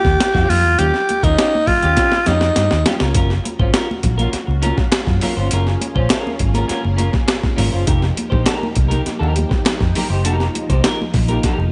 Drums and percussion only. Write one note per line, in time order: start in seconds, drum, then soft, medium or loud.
0.05 kick loud
0.05 snare soft
0.20 snare loud
0.20 closed hi-hat medium
0.35 kick medium
0.35 snare soft
0.50 open hi-hat medium
0.50 high conga medium
0.50 low conga medium
0.79 closed hi-hat medium
0.79 muted conga soft
0.79 low conga medium
0.94 snare soft
0.94 muted conga soft
1.09 closed hi-hat medium
1.09 high conga medium
1.23 kick loud
1.23 closed hi-hat soft
1.38 snare loud
1.38 closed hi-hat medium
1.55 muted conga soft
1.55 high conga medium
1.67 kick medium
1.67 open hi-hat soft
1.67 low conga medium
1.83 closed hi-hat soft
1.83 high conga medium
1.97 kick medium
1.97 snare medium
1.97 closed hi-hat medium
1.97 muted conga soft
2.12 snare medium
2.12 muted conga soft
2.26 snare medium
2.26 closed hi-hat medium
2.26 high conga medium
2.41 snare medium
2.56 snare medium
2.56 closed hi-hat medium
2.56 muted conga soft
2.71 snare medium
2.71 muted conga soft
2.86 snare loud
2.86 closed hi-hat medium
2.86 high conga medium
2.86 low conga medium
3.00 snare medium
3.15 kick loud
3.15 closed hi-hat loud
3.15 muted conga soft
3.30 snare soft
3.30 muted conga soft
3.45 closed hi-hat medium
3.45 high conga medium
3.60 kick medium
3.74 snare loud
3.74 clap loud
3.74 closed hi-hat medium
3.74 muted conga soft
3.91 muted conga soft
3.91 high conga medium
4.03 kick loud
4.03 closed hi-hat medium
4.03 low conga medium
4.19 closed hi-hat soft
4.19 high conga medium
4.33 snare soft
4.33 closed hi-hat medium
4.33 muted conga soft
4.51 muted conga soft
4.63 closed hi-hat medium
4.63 high conga medium
4.78 kick loud
4.78 snare soft
4.78 high conga medium
4.92 snare loud
4.92 clap loud
4.92 closed hi-hat medium
5.07 kick medium
5.07 snare soft
5.07 muted conga soft
5.21 open hi-hat medium
5.21 high conga medium
5.21 low conga medium
5.51 closed hi-hat loud
5.51 muted conga soft
5.67 snare soft
5.81 closed hi-hat medium
5.81 high conga medium
5.96 kick loud
6.10 snare loud
6.10 clap loud
6.10 closed hi-hat loud
6.10 muted conga soft
6.27 muted conga soft
6.27 high conga medium
6.39 kick medium
6.39 closed hi-hat medium
6.39 low conga medium
6.54 closed hi-hat medium
6.54 high conga medium
6.69 snare soft
6.69 closed hi-hat medium
6.69 muted conga soft
6.84 muted conga soft
6.99 closed hi-hat medium
6.99 high conga medium
7.13 kick loud
7.13 snare soft
7.13 high conga medium
7.28 snare loud
7.28 clap loud
7.28 closed hi-hat medium
7.28 muted conga soft
7.43 kick medium
7.43 snare soft
7.43 muted conga soft
7.58 open hi-hat medium
7.58 high conga medium
7.58 low conga medium
7.87 kick loud
7.87 closed hi-hat loud
7.87 muted conga soft
8.02 snare soft
8.02 muted conga soft
8.17 closed hi-hat medium
8.17 high conga medium
8.32 kick loud
8.46 snare loud
8.46 clap loud
8.46 closed hi-hat medium
8.63 muted conga soft
8.63 high conga medium
8.76 kick medium
8.76 closed hi-hat medium
8.76 low conga medium
8.91 closed hi-hat medium
8.91 high conga medium
9.06 snare soft
9.06 closed hi-hat medium
9.23 muted conga soft
9.36 closed hi-hat medium
9.36 high conga medium
9.51 kick loud
9.51 snare soft
9.51 high conga medium
9.66 snare loud
9.66 clap medium
9.66 closed hi-hat loud
9.66 muted conga soft
9.80 kick medium
9.80 snare soft
9.80 muted conga soft
9.95 open hi-hat medium
9.95 high conga medium
9.95 low conga medium
10.25 closed hi-hat loud
10.25 muted conga soft
10.40 snare soft
10.40 muted conga soft
10.55 closed hi-hat medium
10.55 high conga medium
10.70 kick medium
10.70 closed hi-hat medium
10.84 snare loud
10.84 clap loud
10.84 closed hi-hat medium
11.02 high conga medium
11.14 kick medium
11.14 clap medium
11.14 open hi-hat medium
11.14 low conga medium
11.28 closed hi-hat medium
11.28 high conga medium
11.43 kick medium
11.43 snare soft
11.43 closed hi-hat medium
11.43 muted conga soft
11.60 muted conga soft